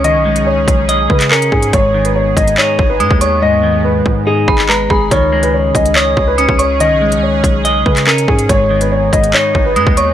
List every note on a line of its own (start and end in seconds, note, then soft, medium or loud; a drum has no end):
0.00 0.16 C#2 loud
0.00 1.70 C#3 medium
0.00 0.68 C#4 medium
0.00 1.70 C#4 medium
0.00 8.45 D#4 medium
0.00 5.07 G#4 medium
0.00 0.25 D#5 loud
0.04 1.10 D#3 medium
0.04 0.44 D#5 loud
0.04 closed hi-hat medium
0.15 0.43 B1 loud
0.25 1.31 G#3 medium
0.36 closed hi-hat medium
0.41 0.66 C#2 loud
0.46 1.06 C#5 medium
0.68 1.08 B1 loud
0.68 kick medium
0.68 closed hi-hat medium
0.89 1.73 D#5 loud
0.89 closed hi-hat medium
1.10 1.50 C#3 loud
1.10 1.28 B4 medium
1.10 kick medium
1.20 clap medium
1.20 closed hi-hat medium
1.31 1.73 C#4 medium
1.31 1.49 A#4 medium
1.31 clap loud
1.42 closed hi-hat medium
1.52 1.72 G#2 loud
1.52 1.70 G#4 medium
1.52 kick medium
1.62 closed hi-hat medium
1.73 2.34 G#1 loud
1.73 2.79 G#2 medium
1.73 5.08 B3 medium
1.73 2.03 C#5 loud
1.73 kick loud
1.73 closed hi-hat medium
1.94 3.00 D#3 medium
2.05 2.14 B4 medium
2.05 closed hi-hat medium
2.16 2.34 C#5 medium
2.37 2.57 G#1 loud
2.37 2.55 D#5 medium
2.37 kick medium
2.37 closed hi-hat medium
2.48 closed hi-hat medium
2.58 3.63 D#4 loud
2.58 2.88 C#5 medium
2.58 clap loud
2.79 3.02 G#1 loud
2.79 kick loud
2.90 3.19 B4 medium
3.00 3.10 G#2 loud
3.00 4.06 G#3 medium
3.00 3.20 D#6 medium
3.00 closed hi-hat medium
3.11 4.02 D#2 loud
3.11 kick loud
3.21 3.39 C#5 medium
3.21 3.41 C#6 medium
3.21 closed hi-hat medium
3.42 4.48 G#2 loud
3.42 3.82 D#5 loud
3.63 4.69 D#3 medium
3.84 4.24 B4 medium
4.06 4.46 G#2 loud
4.06 kick medium
4.27 5.11 D#4 loud
4.27 4.66 G#4 medium
4.48 4.88 G#1 loud
4.48 4.68 B5 medium
4.48 kick loud
4.48 cross-stick medium
4.58 clap medium
4.69 5.11 G#3 medium
4.69 4.87 B4 medium
4.69 4.89 A#5 medium
4.69 clap loud
4.90 5.10 G#1 loud
4.90 5.08 G#4 medium
4.90 5.10 B5 medium
4.90 kick loud
5.11 5.72 C#2 loud
5.11 8.46 C#3 medium
5.11 6.17 D#3 medium
5.11 8.46 C#4 medium
5.11 10.14 G#4 medium
5.11 5.41 C#5 loud
5.11 kick loud
5.11 closed hi-hat medium
5.32 6.38 G#3 medium
5.43 5.52 B4 medium
5.43 closed hi-hat medium
5.54 5.72 C#5 medium
5.75 6.15 C#2 loud
5.75 5.93 D#5 medium
5.75 kick medium
5.75 closed hi-hat medium
5.86 closed hi-hat medium
5.96 6.26 C#5 medium
5.96 7.01 D#5 loud
5.96 clap loud
6.17 6.47 C#2 loud
6.17 kick medium
6.28 6.57 B4 medium
6.38 7.44 C#4 medium
6.38 6.58 D#6 medium
6.38 closed hi-hat medium
6.49 6.92 C#2 loud
6.49 kick loud
6.59 6.77 C#5 medium
6.59 6.79 C#6 medium
6.59 closed hi-hat medium
6.80 7.86 D#3 medium
6.80 7.20 D#5 loud
6.80 closed hi-hat medium
6.91 7.19 B1 loud
7.02 8.07 G#3 medium
7.12 closed hi-hat medium
7.17 7.42 C#2 loud
7.23 7.82 C#5 medium
7.44 7.84 B1 loud
7.44 kick loud
7.44 closed hi-hat medium
7.65 8.49 D#5 loud
7.65 closed hi-hat medium
7.86 8.27 C#3 loud
7.86 8.04 B4 medium
7.86 kick medium
7.97 clap medium
7.97 closed hi-hat medium
8.07 8.49 C#4 medium
8.07 8.25 A#4 medium
8.07 clap loud
8.18 closed hi-hat medium
8.28 8.48 G#2 loud
8.28 8.46 G#4 medium
8.28 kick medium
8.39 closed hi-hat medium
8.49 9.10 G#1 loud
8.49 9.55 G#2 medium
8.49 10.14 B3 medium
8.49 10.14 D#4 medium
8.49 8.79 C#5 loud
8.49 kick loud
8.49 closed hi-hat medium
8.70 9.76 D#3 medium
8.81 8.90 B4 medium
8.81 closed hi-hat medium
8.92 9.10 C#5 medium
9.13 9.33 G#1 loud
9.13 9.31 D#5 medium
9.13 kick medium
9.13 closed hi-hat medium
9.24 closed hi-hat medium
9.34 10.14 D#4 loud
9.34 9.64 C#5 medium
9.34 clap loud
9.55 9.78 G#1 loud
9.55 kick loud
9.66 9.95 B4 medium
9.76 9.86 G#2 loud
9.76 10.14 G#3 medium
9.76 9.96 D#6 medium
9.76 closed hi-hat medium
9.87 10.14 D#2 loud
9.87 kick loud
9.97 10.14 C#5 medium
9.97 10.14 C#6 medium
9.97 closed hi-hat medium